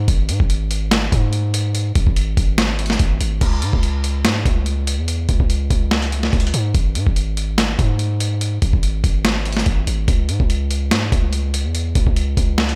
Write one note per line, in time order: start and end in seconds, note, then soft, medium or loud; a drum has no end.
0.08 0.30 G#1 loud
0.08 kick loud
0.08 closed hi-hat medium
0.29 0.39 G#2 loud
0.29 closed hi-hat medium
0.40 1.09 G#1 loud
0.40 kick loud
0.50 closed hi-hat medium
0.71 closed hi-hat medium
0.91 snare loud
0.91 closed hi-hat medium
1.12 1.92 G#2 loud
1.12 kick loud
1.12 closed hi-hat medium
1.33 closed hi-hat medium
1.54 closed hi-hat medium
1.75 closed hi-hat medium
1.95 2.06 G#1 loud
1.95 kick loud
1.95 closed hi-hat medium
2.07 2.36 G#1 loud
2.07 kick loud
2.16 closed hi-hat medium
2.37 2.97 G#1 loud
2.37 kick loud
2.37 closed hi-hat medium
2.58 snare loud
2.58 closed hi-hat medium
2.79 closed hi-hat medium
2.86 closed hi-hat medium
2.90 snare medium
2.90 closed hi-hat medium
2.99 3.20 G#1 loud
2.99 kick loud
2.99 closed hi-hat medium
3.20 3.40 G#1 loud
3.20 closed hi-hat loud
3.41 3.64 C#2 loud
3.41 kick loud
3.41 closed hi-hat medium
3.41 crash loud
3.62 3.73 G#2 loud
3.62 closed hi-hat medium
3.73 4.26 C#2 loud
3.73 kick loud
3.83 closed hi-hat medium
4.04 closed hi-hat medium
4.25 4.44 G#2 loud
4.25 snare loud
4.25 closed hi-hat medium
4.45 5.00 C#2 loud
4.45 kick loud
4.45 closed hi-hat medium
4.66 closed hi-hat medium
4.87 closed hi-hat medium
4.98 5.27 E2 loud
5.08 closed hi-hat medium
5.29 5.39 C#2 loud
5.29 kick loud
5.29 closed hi-hat medium
5.40 5.69 C#2 loud
5.40 kick loud
5.50 closed hi-hat medium
5.70 6.31 C#2 loud
5.70 kick loud
5.70 closed hi-hat medium
5.91 snare loud
5.91 closed hi-hat soft
6.02 closed hi-hat medium
6.12 closed hi-hat medium
6.23 snare medium
6.33 6.53 C#2 loud
6.33 kick medium
6.33 closed hi-hat soft
6.40 closed hi-hat medium
6.47 closed hi-hat medium
6.54 6.74 G#2 loud
6.54 closed hi-hat loud
6.75 6.97 G#1 loud
6.75 kick loud
6.75 closed hi-hat medium
6.95 7.06 G#2 loud
6.95 closed hi-hat medium
7.07 7.76 G#1 loud
7.07 kick medium
7.16 closed hi-hat medium
7.37 closed hi-hat medium
7.58 snare loud
7.58 closed hi-hat medium
7.79 8.59 G#2 loud
7.79 kick loud
7.79 closed hi-hat medium
7.99 closed hi-hat medium
8.20 closed hi-hat medium
8.41 closed hi-hat medium
8.62 8.73 G#1 loud
8.62 kick loud
8.62 closed hi-hat medium
8.73 9.03 G#1 loud
8.73 kick loud
8.83 closed hi-hat medium
9.04 9.64 G#1 loud
9.04 kick loud
9.04 closed hi-hat medium
9.25 snare loud
9.25 closed hi-hat medium
9.45 closed hi-hat medium
9.53 closed hi-hat medium
9.57 snare medium
9.57 closed hi-hat medium
9.66 9.86 G#1 loud
9.66 kick loud
9.66 closed hi-hat medium
9.87 10.07 G#1 loud
9.87 closed hi-hat loud
10.08 10.30 C#2 loud
10.08 kick loud
10.08 closed hi-hat medium
10.29 10.39 G#2 loud
10.29 closed hi-hat medium
10.40 10.93 C#2 loud
10.40 kick loud
10.50 closed hi-hat medium
10.71 closed hi-hat medium
10.91 11.11 G#2 medium
10.91 snare loud
10.91 closed hi-hat medium
11.12 11.66 C#2 loud
11.12 kick loud
11.12 closed hi-hat medium
11.33 closed hi-hat medium
11.54 closed hi-hat medium
11.65 11.94 E2 loud
11.75 closed hi-hat medium
11.95 12.06 C#2 loud
11.95 kick loud
11.95 closed hi-hat medium
12.07 12.36 C#2 loud
12.07 kick loud
12.16 closed hi-hat medium
12.37 12.75 C#2 loud
12.37 kick loud
12.37 closed hi-hat medium
12.58 snare loud
12.58 closed hi-hat soft
12.69 closed hi-hat medium